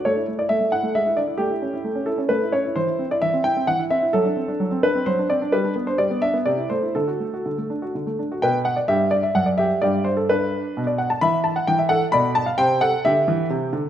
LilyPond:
\new Staff \with { instrumentName = "Grand piano" } { \time 3/4 \key a \mixolydian \tempo 4 = 130 << { cis''8. d''16 e''8 fis''8 e''8 d''8 | g'4. a'8 b'8 cis''8 | \key g \major c''8. d''16 e''8 g''8 fis''8 e''8 | a'4. b'8 c''8 d''8 |
b'8. c''16 d''8 e''8 d''8 c''8 | a'2 r4 | <b' g''>8 fis''16 d''16 <g' e''>8 d''16 e''16 fis''16 d''16 <g' e''>8 | <g' d''>8 c''16 a'16 <d' b'>4~ <d' b'>16 d''16 fis''16 a''16 |
<e'' b''>8 a''16 fis''16 g''16 e''16 <a' fis''>8 <d'' b''>8 a''16 f''16 | <c'' g''>8 <a' fis''>8 <g' e''>4. r8 | } \\ { a16 e'16 a16 e'16 a16 a16 e'16 a16 gis16 e'16 d'16 e'16 | a16 e'16 cis'16 e'16 a16 cis'16 e'16 cis'16 a16 e'16 cis'16 e'16 | e16 e'16 c'16 e'16 e16 c'16 e'16 c'16 e16 e'16 c'16 e'16 | fis16 d'16 c'16 d'16 fis16 c'16 d'16 c'16 fis16 d'16 c'16 d'16 |
g16 d'16 b16 d'16 g16 b16 d'16 b16 c16 e'16 a16 e'16 | d16 fis'16 a16 fis'16 d16 a16 d'16 fis'16 d16 a16 d'16 fis'16 | b,4 g,4 fis,4 | g,2 b,4 |
e4 e4 b,4 | c4 d8 e8 c8 d8 | } >> }